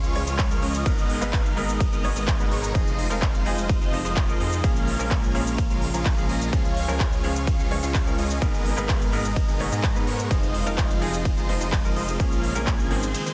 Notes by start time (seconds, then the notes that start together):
Already playing: C#3 F3 G#3 F4 G#4
0.03 C#2 G#3 C#4 F4 C#5 F5, cabasa
0.14 F3 G#3 C#4 C#5, open hi-hat
0.27 C#2 G#3 C#4 F4 C#5 F5, cabasa
0.39 kick, clap, ride, cabasa
0.50 F3 G#3 C#4 A#4, cabasa
0.62 C#2 G#3 C#4 F4 C#5 D#5, open hi-hat
0.75 cabasa
0.85 G#1 G#2 B2 G#3 B3 D#4 A#4, kick, ride, cabasa
0.98 cabasa
1.10 open hi-hat
1.21 G#1 G#2 G#3 B3 D#4 A#4 B4 F5, cabasa
1.33 kick, clap, ride, cabasa
1.46 cabasa
1.56 G#1 G#2 G#3 B3 D#4 A#4 D#5, open hi-hat
1.69 cabasa
1.80 kick, ride, cabasa
1.92 G#1 G#3 B3 D#4 A#4 D#5, cabasa
2.03 G#2 G#3 B3 D#4 C#5, open hi-hat
2.16 G#1 G#3 B3 D#4 A#4 D#5, cabasa
2.28 kick, clap, ride, cabasa
2.39 G#2 G#3 B3 D#4 B4, cabasa
2.51 G#1 G#3 B3 D#4 A#4 C#5, open hi-hat
2.64 cabasa
2.74 F1 C3 F3 G#3 C4 D#4 F4 G#4 D#5, kick, ride, cabasa
2.87 cabasa
2.99 open hi-hat
3.10 F1 F3 G#3 C4 D#4 F4 A#4 C5 F5, cabasa
3.22 kick, clap, ride, cabasa
3.35 cabasa
3.45 F1 F3 G#3 C4 D#4 F4 G#4 C5 D#5, open hi-hat
3.58 cabasa
3.69 kick, ride, cabasa
3.81 F1 G#3 D#4 F4 C5 D#5, cabasa
3.92 F3 C4 D#4 C5, open hi-hat
4.05 F1 G#3 D#4 F4 C5 D#5, cabasa
4.17 kick, clap, ride, cabasa
4.28 F3 C4 D#4 A#4, cabasa
4.40 F2 G#3 D#4 F4 C5 D#5, open hi-hat
4.53 cabasa
4.63 A#1 A#2 C#3 F3 G#3 A#3 C#4 F4 G#4 A#4 F5, kick, ride, cabasa
4.76 cabasa
4.88 open hi-hat
4.99 A#1 A#2 F3 G#3 A#3 C#4 F4 A#4 G#5, cabasa
5.11 kick, clap, ride, cabasa
5.23 cabasa
5.34 A#1 A#2 F3 G#3 A#3 C#4 F4 G#4 A#4 F5, open hi-hat
5.47 cabasa
5.58 kick, ride, cabasa
5.70 A#1 G#3 C#4 F4 A#4 F5, cabasa
5.82 open hi-hat
5.93 A#1 A#2 F3 G#3 A#3 C#4 F4 G#4 A#4 F5, cabasa
6.05 kick, clap, ride, cabasa
6.17 A#2 F3 A#3 C#4 G#4, cabasa
6.29 A#1 G#3 C#4 F4 A#4 D#5, open hi-hat
6.42 cabasa
6.52 C#2 F3 G#3 C#4 F4 G#4 F5, kick, ride, cabasa
6.65 cabasa
6.77 open hi-hat
6.88 C#2 F3 G#3 C#4 F4 A#4 C#5 G#5, cabasa
7.00 kick, clap, ride, cabasa
7.12 cabasa
7.23 C#2 F3 G#3 C#4 F4 G#4 C#5 F5, open hi-hat
7.36 cabasa
7.47 kick, ride, cabasa
7.59 C#2 G#3 C#4 F4 C#5 F5, cabasa
7.70 F3 G#3 C#4 C#5, open hi-hat
7.83 C#2 G#3 C#4 F4 C#5 F5, cabasa
7.94 kick, clap, ride, cabasa
8.06 F3 G#3 C#4 A#4, cabasa
8.18 C#2 G#3 C#4 F4 C#5 D#5, open hi-hat
8.30 cabasa
8.41 G#1 G#2 B2 G#3 B3 D#4 G#4 A#4 D#5, kick, ride, cabasa
8.54 cabasa
8.66 open hi-hat
8.77 G#1 G#2 G#3 B3 D#4 A#4 B4 F5, cabasa
8.89 kick, clap, ride, cabasa
9.01 cabasa
9.12 G#1 G#2 G#3 B3 D#4 A#4 D#5, open hi-hat
9.25 cabasa
9.36 kick, ride, cabasa
9.48 G#1 G#3 B3 D#4 A#4 D#5, cabasa
9.59 G#2 G#3 B3 D#4 C#5, open hi-hat
9.72 G#2 G#3 B3 D#4 A#4 D#5, cabasa
9.84 kick, clap, ride, cabasa
9.95 G#2 G#3 B3 D#4 B4, cabasa
10.07 G#2 G#3 B3 D#4 A#4 C#5, open hi-hat
10.20 cabasa
10.30 F1 C3 F3 G#3 C4 D#4 F4 G#4 C5 D#5, kick, ride, cabasa
10.43 cabasa
10.54 open hi-hat
10.66 F1 F3 G#3 C4 D#4 F4 A#4 C5 F5, cabasa
10.78 kick, clap, ride, cabasa
10.90 cabasa
11.01 F1 F3 G#3 C4 D#4 F4 G#4 C5 D#5, open hi-hat
11.14 cabasa
11.25 kick, ride, cabasa
11.37 F1 G#3 D#4 F4 C5 D#5, cabasa
11.48 F3 C4 D#4 C5, open hi-hat
11.61 F1 G#3 D#4 F4 C5 D#5, cabasa
11.72 kick, clap, ride, cabasa
11.84 F3 C4 D#4 A#4, cabasa
11.96 F1 G#3 D#4 F4 C5 D#5, open hi-hat
12.08 cabasa
12.19 A#1 A#2 C#3 F3 G#3 A#3 C#4 F4 G#4, kick, ride, cabasa
12.32 cabasa
12.43 open hi-hat
12.55 A#1 A#2 F3 G#3 A#3 C#4 F4 A#4 G#5, cabasa
12.67 kick, clap, ride, cabasa
12.79 cabasa
12.90 G#1 D#3 F3 G#3 A#3 C4 C#4 G#4 C5, open hi-hat
13.03 cabasa
13.14 C3 D#3 D#4 G#4, ride, cabasa
13.26 D#3 G#3 C4 G#4 C5, cabasa